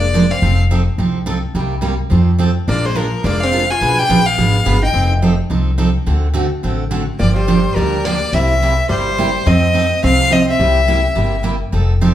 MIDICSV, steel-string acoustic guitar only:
0, 0, Header, 1, 2, 480
1, 0, Start_track
1, 0, Tempo, 282752
1, 711, Time_signature, 4, 2, 24, 8
1, 20611, End_track
2, 0, Start_track
2, 0, Title_t, "Steel-string acoustic guitar"
2, 0, Program_c, 0, 25
2, 238, Note_on_c, 0, 53, 79
2, 245, Note_on_c, 0, 56, 69
2, 255, Note_on_c, 0, 62, 81
2, 266, Note_on_c, 0, 65, 75
2, 268, Note_on_c, 0, 70, 74
2, 415, Note_off_c, 0, 53, 0
2, 418, Note_off_c, 0, 56, 0
2, 423, Note_off_c, 0, 62, 0
2, 428, Note_off_c, 0, 65, 0
2, 430, Note_off_c, 0, 70, 0
2, 724, Note_on_c, 0, 53, 60
2, 726, Note_on_c, 0, 60, 64
2, 739, Note_on_c, 0, 63, 53
2, 749, Note_on_c, 0, 69, 64
2, 1040, Note_off_c, 0, 53, 0
2, 1041, Note_off_c, 0, 60, 0
2, 1048, Note_off_c, 0, 63, 0
2, 1053, Note_off_c, 0, 69, 0
2, 1201, Note_on_c, 0, 53, 71
2, 1204, Note_on_c, 0, 60, 84
2, 1208, Note_on_c, 0, 63, 84
2, 1227, Note_on_c, 0, 69, 79
2, 1376, Note_off_c, 0, 53, 0
2, 1378, Note_off_c, 0, 60, 0
2, 1380, Note_off_c, 0, 63, 0
2, 1389, Note_off_c, 0, 69, 0
2, 1672, Note_on_c, 0, 53, 59
2, 1677, Note_on_c, 0, 60, 54
2, 1687, Note_on_c, 0, 63, 57
2, 1695, Note_on_c, 0, 69, 62
2, 1994, Note_off_c, 0, 53, 0
2, 1996, Note_off_c, 0, 60, 0
2, 2001, Note_off_c, 0, 63, 0
2, 2005, Note_off_c, 0, 69, 0
2, 2139, Note_on_c, 0, 53, 79
2, 2149, Note_on_c, 0, 60, 80
2, 2154, Note_on_c, 0, 63, 90
2, 2155, Note_on_c, 0, 69, 98
2, 2325, Note_off_c, 0, 53, 0
2, 2330, Note_off_c, 0, 60, 0
2, 2332, Note_off_c, 0, 63, 0
2, 2333, Note_off_c, 0, 69, 0
2, 2626, Note_on_c, 0, 48, 59
2, 2636, Note_on_c, 0, 55, 65
2, 2637, Note_on_c, 0, 58, 57
2, 2645, Note_on_c, 0, 63, 69
2, 2652, Note_on_c, 0, 67, 64
2, 2951, Note_off_c, 0, 48, 0
2, 2956, Note_off_c, 0, 55, 0
2, 2957, Note_off_c, 0, 58, 0
2, 2960, Note_off_c, 0, 63, 0
2, 2964, Note_off_c, 0, 67, 0
2, 3075, Note_on_c, 0, 48, 75
2, 3087, Note_on_c, 0, 55, 73
2, 3087, Note_on_c, 0, 63, 84
2, 3091, Note_on_c, 0, 58, 74
2, 3102, Note_on_c, 0, 67, 82
2, 3272, Note_off_c, 0, 48, 0
2, 3279, Note_off_c, 0, 55, 0
2, 3279, Note_off_c, 0, 63, 0
2, 3280, Note_off_c, 0, 58, 0
2, 3286, Note_off_c, 0, 67, 0
2, 3563, Note_on_c, 0, 53, 59
2, 3576, Note_on_c, 0, 60, 48
2, 3581, Note_on_c, 0, 63, 47
2, 3590, Note_on_c, 0, 69, 63
2, 3899, Note_off_c, 0, 53, 0
2, 3906, Note_off_c, 0, 60, 0
2, 3908, Note_off_c, 0, 63, 0
2, 3913, Note_off_c, 0, 69, 0
2, 4048, Note_on_c, 0, 53, 78
2, 4058, Note_on_c, 0, 63, 73
2, 4061, Note_on_c, 0, 60, 84
2, 4075, Note_on_c, 0, 69, 76
2, 4239, Note_off_c, 0, 53, 0
2, 4244, Note_off_c, 0, 63, 0
2, 4245, Note_off_c, 0, 60, 0
2, 4252, Note_off_c, 0, 69, 0
2, 4545, Note_on_c, 0, 53, 55
2, 4551, Note_on_c, 0, 56, 57
2, 4552, Note_on_c, 0, 62, 58
2, 4564, Note_on_c, 0, 65, 61
2, 4564, Note_on_c, 0, 70, 74
2, 4870, Note_off_c, 0, 53, 0
2, 4873, Note_off_c, 0, 56, 0
2, 4873, Note_off_c, 0, 62, 0
2, 4880, Note_off_c, 0, 65, 0
2, 4880, Note_off_c, 0, 70, 0
2, 5016, Note_on_c, 0, 53, 78
2, 5018, Note_on_c, 0, 56, 69
2, 5026, Note_on_c, 0, 62, 76
2, 5028, Note_on_c, 0, 65, 73
2, 5038, Note_on_c, 0, 70, 74
2, 5203, Note_off_c, 0, 53, 0
2, 5204, Note_off_c, 0, 56, 0
2, 5208, Note_off_c, 0, 62, 0
2, 5209, Note_off_c, 0, 65, 0
2, 5214, Note_off_c, 0, 70, 0
2, 5488, Note_on_c, 0, 53, 47
2, 5500, Note_on_c, 0, 56, 62
2, 5501, Note_on_c, 0, 65, 59
2, 5507, Note_on_c, 0, 62, 54
2, 5515, Note_on_c, 0, 70, 57
2, 5821, Note_off_c, 0, 53, 0
2, 5828, Note_off_c, 0, 56, 0
2, 5828, Note_off_c, 0, 65, 0
2, 5831, Note_off_c, 0, 62, 0
2, 5835, Note_off_c, 0, 70, 0
2, 5974, Note_on_c, 0, 53, 72
2, 5987, Note_on_c, 0, 56, 78
2, 5988, Note_on_c, 0, 62, 77
2, 5993, Note_on_c, 0, 65, 81
2, 6000, Note_on_c, 0, 70, 86
2, 6161, Note_off_c, 0, 53, 0
2, 6168, Note_off_c, 0, 56, 0
2, 6169, Note_off_c, 0, 62, 0
2, 6171, Note_off_c, 0, 65, 0
2, 6175, Note_off_c, 0, 70, 0
2, 6466, Note_on_c, 0, 47, 59
2, 6474, Note_on_c, 0, 53, 60
2, 6481, Note_on_c, 0, 59, 56
2, 6488, Note_on_c, 0, 62, 66
2, 6489, Note_on_c, 0, 68, 70
2, 6491, Note_on_c, 0, 71, 64
2, 6790, Note_off_c, 0, 47, 0
2, 6794, Note_off_c, 0, 53, 0
2, 6798, Note_off_c, 0, 59, 0
2, 6801, Note_off_c, 0, 62, 0
2, 6802, Note_off_c, 0, 68, 0
2, 6803, Note_off_c, 0, 71, 0
2, 6942, Note_on_c, 0, 47, 77
2, 6953, Note_on_c, 0, 62, 84
2, 6955, Note_on_c, 0, 53, 81
2, 6956, Note_on_c, 0, 59, 80
2, 6964, Note_on_c, 0, 68, 88
2, 6968, Note_on_c, 0, 71, 82
2, 7126, Note_off_c, 0, 47, 0
2, 7131, Note_off_c, 0, 62, 0
2, 7132, Note_off_c, 0, 53, 0
2, 7132, Note_off_c, 0, 59, 0
2, 7137, Note_off_c, 0, 68, 0
2, 7139, Note_off_c, 0, 71, 0
2, 7425, Note_on_c, 0, 47, 52
2, 7431, Note_on_c, 0, 53, 61
2, 7434, Note_on_c, 0, 59, 51
2, 7436, Note_on_c, 0, 62, 55
2, 7444, Note_on_c, 0, 68, 61
2, 7448, Note_on_c, 0, 71, 53
2, 7749, Note_off_c, 0, 47, 0
2, 7753, Note_off_c, 0, 53, 0
2, 7754, Note_off_c, 0, 59, 0
2, 7755, Note_off_c, 0, 62, 0
2, 7759, Note_off_c, 0, 68, 0
2, 7761, Note_off_c, 0, 71, 0
2, 7902, Note_on_c, 0, 47, 73
2, 7906, Note_on_c, 0, 53, 79
2, 7910, Note_on_c, 0, 59, 76
2, 7913, Note_on_c, 0, 68, 84
2, 7914, Note_on_c, 0, 62, 86
2, 7919, Note_on_c, 0, 71, 92
2, 8085, Note_off_c, 0, 47, 0
2, 8088, Note_off_c, 0, 53, 0
2, 8089, Note_off_c, 0, 59, 0
2, 8091, Note_off_c, 0, 62, 0
2, 8091, Note_off_c, 0, 68, 0
2, 8094, Note_off_c, 0, 71, 0
2, 8364, Note_on_c, 0, 53, 62
2, 8371, Note_on_c, 0, 60, 55
2, 8377, Note_on_c, 0, 63, 61
2, 8394, Note_on_c, 0, 69, 70
2, 8699, Note_off_c, 0, 53, 0
2, 8702, Note_off_c, 0, 60, 0
2, 8705, Note_off_c, 0, 63, 0
2, 8714, Note_off_c, 0, 69, 0
2, 8867, Note_on_c, 0, 53, 77
2, 8871, Note_on_c, 0, 60, 75
2, 8881, Note_on_c, 0, 63, 75
2, 8891, Note_on_c, 0, 69, 90
2, 9048, Note_off_c, 0, 53, 0
2, 9050, Note_off_c, 0, 60, 0
2, 9054, Note_off_c, 0, 63, 0
2, 9059, Note_off_c, 0, 69, 0
2, 9333, Note_on_c, 0, 53, 55
2, 9349, Note_on_c, 0, 60, 51
2, 9349, Note_on_c, 0, 63, 59
2, 9360, Note_on_c, 0, 69, 59
2, 9663, Note_off_c, 0, 53, 0
2, 9671, Note_off_c, 0, 60, 0
2, 9671, Note_off_c, 0, 63, 0
2, 9676, Note_off_c, 0, 69, 0
2, 9809, Note_on_c, 0, 53, 69
2, 9816, Note_on_c, 0, 63, 90
2, 9819, Note_on_c, 0, 60, 75
2, 9827, Note_on_c, 0, 69, 85
2, 9999, Note_off_c, 0, 53, 0
2, 10002, Note_off_c, 0, 63, 0
2, 10003, Note_off_c, 0, 60, 0
2, 10008, Note_off_c, 0, 69, 0
2, 10292, Note_on_c, 0, 57, 58
2, 10299, Note_on_c, 0, 50, 60
2, 10300, Note_on_c, 0, 60, 61
2, 10313, Note_on_c, 0, 69, 62
2, 10315, Note_on_c, 0, 66, 59
2, 10623, Note_off_c, 0, 57, 0
2, 10626, Note_off_c, 0, 50, 0
2, 10627, Note_off_c, 0, 60, 0
2, 10633, Note_off_c, 0, 69, 0
2, 10634, Note_off_c, 0, 66, 0
2, 10755, Note_on_c, 0, 50, 85
2, 10766, Note_on_c, 0, 57, 82
2, 10771, Note_on_c, 0, 60, 77
2, 10774, Note_on_c, 0, 66, 81
2, 10787, Note_on_c, 0, 69, 82
2, 10952, Note_off_c, 0, 50, 0
2, 10957, Note_off_c, 0, 57, 0
2, 10960, Note_off_c, 0, 60, 0
2, 10961, Note_off_c, 0, 66, 0
2, 10967, Note_off_c, 0, 69, 0
2, 11258, Note_on_c, 0, 50, 53
2, 11268, Note_on_c, 0, 57, 62
2, 11276, Note_on_c, 0, 66, 52
2, 11277, Note_on_c, 0, 60, 52
2, 11288, Note_on_c, 0, 69, 60
2, 11586, Note_off_c, 0, 50, 0
2, 11591, Note_off_c, 0, 57, 0
2, 11595, Note_off_c, 0, 60, 0
2, 11595, Note_off_c, 0, 66, 0
2, 11601, Note_off_c, 0, 69, 0
2, 11726, Note_on_c, 0, 50, 80
2, 11728, Note_on_c, 0, 57, 82
2, 11739, Note_on_c, 0, 60, 69
2, 11739, Note_on_c, 0, 69, 80
2, 11741, Note_on_c, 0, 66, 80
2, 11917, Note_off_c, 0, 50, 0
2, 11918, Note_off_c, 0, 57, 0
2, 11923, Note_off_c, 0, 69, 0
2, 11924, Note_off_c, 0, 60, 0
2, 11924, Note_off_c, 0, 66, 0
2, 12213, Note_on_c, 0, 50, 54
2, 12216, Note_on_c, 0, 53, 60
2, 12220, Note_on_c, 0, 58, 54
2, 12220, Note_on_c, 0, 62, 54
2, 12233, Note_on_c, 0, 67, 68
2, 12543, Note_off_c, 0, 50, 0
2, 12545, Note_off_c, 0, 53, 0
2, 12547, Note_off_c, 0, 58, 0
2, 12547, Note_off_c, 0, 62, 0
2, 12554, Note_off_c, 0, 67, 0
2, 12691, Note_on_c, 0, 50, 79
2, 12701, Note_on_c, 0, 62, 86
2, 12702, Note_on_c, 0, 53, 81
2, 12703, Note_on_c, 0, 58, 76
2, 12713, Note_on_c, 0, 67, 79
2, 12880, Note_off_c, 0, 50, 0
2, 12885, Note_off_c, 0, 53, 0
2, 12885, Note_off_c, 0, 62, 0
2, 12886, Note_off_c, 0, 58, 0
2, 12891, Note_off_c, 0, 67, 0
2, 13188, Note_on_c, 0, 50, 57
2, 13196, Note_on_c, 0, 53, 49
2, 13198, Note_on_c, 0, 58, 57
2, 13208, Note_on_c, 0, 62, 59
2, 13213, Note_on_c, 0, 67, 57
2, 13512, Note_off_c, 0, 50, 0
2, 13515, Note_off_c, 0, 53, 0
2, 13516, Note_off_c, 0, 58, 0
2, 13521, Note_off_c, 0, 62, 0
2, 13524, Note_off_c, 0, 67, 0
2, 13677, Note_on_c, 0, 50, 73
2, 13690, Note_on_c, 0, 53, 81
2, 13696, Note_on_c, 0, 58, 79
2, 13696, Note_on_c, 0, 62, 77
2, 13702, Note_on_c, 0, 67, 84
2, 13853, Note_off_c, 0, 50, 0
2, 13860, Note_off_c, 0, 53, 0
2, 13862, Note_off_c, 0, 58, 0
2, 13863, Note_off_c, 0, 62, 0
2, 13865, Note_off_c, 0, 67, 0
2, 14144, Note_on_c, 0, 48, 59
2, 14147, Note_on_c, 0, 55, 55
2, 14158, Note_on_c, 0, 58, 63
2, 14165, Note_on_c, 0, 64, 63
2, 14166, Note_on_c, 0, 67, 61
2, 14469, Note_off_c, 0, 48, 0
2, 14471, Note_off_c, 0, 55, 0
2, 14476, Note_off_c, 0, 58, 0
2, 14480, Note_off_c, 0, 64, 0
2, 14481, Note_off_c, 0, 67, 0
2, 14639, Note_on_c, 0, 48, 66
2, 14641, Note_on_c, 0, 55, 76
2, 14650, Note_on_c, 0, 58, 90
2, 14659, Note_on_c, 0, 64, 76
2, 14663, Note_on_c, 0, 67, 77
2, 14814, Note_off_c, 0, 48, 0
2, 14815, Note_off_c, 0, 55, 0
2, 14820, Note_off_c, 0, 58, 0
2, 14824, Note_off_c, 0, 64, 0
2, 14826, Note_off_c, 0, 67, 0
2, 15104, Note_on_c, 0, 48, 48
2, 15110, Note_on_c, 0, 55, 57
2, 15119, Note_on_c, 0, 58, 55
2, 15121, Note_on_c, 0, 64, 57
2, 15123, Note_on_c, 0, 67, 61
2, 15430, Note_off_c, 0, 48, 0
2, 15433, Note_off_c, 0, 55, 0
2, 15438, Note_off_c, 0, 58, 0
2, 15438, Note_off_c, 0, 64, 0
2, 15440, Note_off_c, 0, 67, 0
2, 15586, Note_on_c, 0, 48, 67
2, 15590, Note_on_c, 0, 55, 72
2, 15594, Note_on_c, 0, 58, 79
2, 15595, Note_on_c, 0, 64, 74
2, 15610, Note_on_c, 0, 67, 94
2, 15769, Note_off_c, 0, 48, 0
2, 15770, Note_off_c, 0, 55, 0
2, 15772, Note_off_c, 0, 58, 0
2, 15773, Note_off_c, 0, 64, 0
2, 15781, Note_off_c, 0, 67, 0
2, 16060, Note_on_c, 0, 53, 64
2, 16066, Note_on_c, 0, 60, 70
2, 16073, Note_on_c, 0, 63, 58
2, 16084, Note_on_c, 0, 69, 61
2, 16388, Note_off_c, 0, 53, 0
2, 16391, Note_off_c, 0, 60, 0
2, 16395, Note_off_c, 0, 63, 0
2, 16401, Note_off_c, 0, 69, 0
2, 16527, Note_on_c, 0, 53, 71
2, 16541, Note_on_c, 0, 60, 82
2, 16548, Note_on_c, 0, 63, 80
2, 16550, Note_on_c, 0, 69, 82
2, 16720, Note_off_c, 0, 53, 0
2, 16726, Note_off_c, 0, 60, 0
2, 16730, Note_off_c, 0, 63, 0
2, 16731, Note_off_c, 0, 69, 0
2, 17023, Note_on_c, 0, 53, 55
2, 17029, Note_on_c, 0, 60, 60
2, 17036, Note_on_c, 0, 69, 62
2, 17045, Note_on_c, 0, 63, 52
2, 17351, Note_off_c, 0, 53, 0
2, 17354, Note_off_c, 0, 60, 0
2, 17357, Note_off_c, 0, 69, 0
2, 17361, Note_off_c, 0, 63, 0
2, 17489, Note_on_c, 0, 53, 73
2, 17496, Note_on_c, 0, 60, 78
2, 17510, Note_on_c, 0, 63, 75
2, 17510, Note_on_c, 0, 69, 91
2, 17681, Note_off_c, 0, 53, 0
2, 17685, Note_off_c, 0, 60, 0
2, 17691, Note_off_c, 0, 63, 0
2, 17691, Note_off_c, 0, 69, 0
2, 17985, Note_on_c, 0, 48, 55
2, 17993, Note_on_c, 0, 55, 55
2, 18003, Note_on_c, 0, 64, 63
2, 18003, Note_on_c, 0, 67, 70
2, 18004, Note_on_c, 0, 58, 56
2, 18312, Note_off_c, 0, 48, 0
2, 18316, Note_off_c, 0, 55, 0
2, 18321, Note_off_c, 0, 64, 0
2, 18321, Note_off_c, 0, 67, 0
2, 18322, Note_off_c, 0, 58, 0
2, 18465, Note_on_c, 0, 48, 77
2, 18468, Note_on_c, 0, 55, 73
2, 18476, Note_on_c, 0, 64, 88
2, 18482, Note_on_c, 0, 58, 76
2, 18492, Note_on_c, 0, 67, 87
2, 18650, Note_off_c, 0, 48, 0
2, 18651, Note_off_c, 0, 55, 0
2, 18655, Note_off_c, 0, 64, 0
2, 18658, Note_off_c, 0, 58, 0
2, 18663, Note_off_c, 0, 67, 0
2, 18931, Note_on_c, 0, 48, 57
2, 18937, Note_on_c, 0, 58, 59
2, 18938, Note_on_c, 0, 55, 53
2, 18953, Note_on_c, 0, 64, 57
2, 18955, Note_on_c, 0, 67, 63
2, 19265, Note_off_c, 0, 48, 0
2, 19268, Note_off_c, 0, 58, 0
2, 19269, Note_off_c, 0, 55, 0
2, 19276, Note_off_c, 0, 64, 0
2, 19277, Note_off_c, 0, 67, 0
2, 19406, Note_on_c, 0, 48, 74
2, 19417, Note_on_c, 0, 55, 76
2, 19417, Note_on_c, 0, 58, 78
2, 19419, Note_on_c, 0, 64, 89
2, 19434, Note_on_c, 0, 67, 78
2, 19600, Note_off_c, 0, 48, 0
2, 19606, Note_off_c, 0, 55, 0
2, 19606, Note_off_c, 0, 58, 0
2, 19607, Note_off_c, 0, 64, 0
2, 19614, Note_off_c, 0, 67, 0
2, 19902, Note_on_c, 0, 53, 60
2, 19908, Note_on_c, 0, 60, 58
2, 19920, Note_on_c, 0, 63, 57
2, 19925, Note_on_c, 0, 69, 71
2, 20231, Note_off_c, 0, 53, 0
2, 20234, Note_off_c, 0, 60, 0
2, 20240, Note_off_c, 0, 63, 0
2, 20243, Note_off_c, 0, 69, 0
2, 20394, Note_on_c, 0, 53, 78
2, 20399, Note_on_c, 0, 60, 84
2, 20406, Note_on_c, 0, 63, 77
2, 20417, Note_on_c, 0, 69, 91
2, 20574, Note_off_c, 0, 53, 0
2, 20577, Note_off_c, 0, 60, 0
2, 20581, Note_off_c, 0, 63, 0
2, 20586, Note_off_c, 0, 69, 0
2, 20611, End_track
0, 0, End_of_file